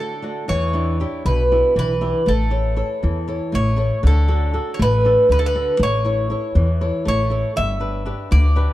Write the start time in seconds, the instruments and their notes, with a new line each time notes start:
Already playing: nylon-string guitar D3 A3 D4 F#4, bouzouki A4 D5
0.22 nylon-string guitar A3 D4 F#4
0.48 upright bass E2, nylon-string guitar E3, bouzouki C#5
0.73 nylon-string guitar D4 E4 G4
1.00 nylon-string guitar D4 E4 G4
1.25 upright bass B1, nylon-string guitar B2, bouzouki B4
1.52 nylon-string guitar D4 E4 G4
1.76 upright bass B1, nylon-string guitar E3, bouzouki B4
2.01 nylon-string guitar D4 E4 G4
2.26 upright bass A1, nylon-string guitar A3, bouzouki A4
2.50 nylon-string guitar E4 A4 C#5
2.76 nylon-string guitar E4 A4 C#5
3.03 upright bass E2, nylon-string guitar E3
3.28 nylon-string guitar E4 A4 C#5
3.52 upright bass A1, nylon-string guitar A3, bouzouki C#5
3.76 nylon-string guitar E4 A4 C#5
4.03 upright bass D2, nylon-string guitar D3, bouzouki A4
4.28 nylon-string guitar D4 F#4 A4
4.54 nylon-string guitar D4 F#4 A4
4.74 bouzouki C#5
4.79 upright bass A1, nylon-string guitar A3, bouzouki B4
5.05 nylon-string guitar D4 F#4 A4
5.29 upright bass D2, nylon-string guitar D3, bouzouki B4
5.39 bouzouki A4
5.46 bouzouki B4
5.55 nylon-string guitar D4 F#4 A4
5.79 upright bass A1, nylon-string guitar A3, bouzouki C#5
6.05 nylon-string guitar E4 A4 C#5
6.30 nylon-string guitar E4 A4 C#5
6.55 upright bass E2, nylon-string guitar E3
6.81 nylon-string guitar E4 A4 C#5
7.05 upright bass A1, nylon-string guitar A3, bouzouki C#5
7.30 nylon-string guitar E4 A4 C#5
7.56 upright bass G1, nylon-string guitar G3, bouzouki E5
7.80 nylon-string guitar D4 G4 B4
8.06 nylon-string guitar D4 G4 B4
8.31 upright bass D2, nylon-string guitar D3, bouzouki D5
8.56 nylon-string guitar D4 G4 B4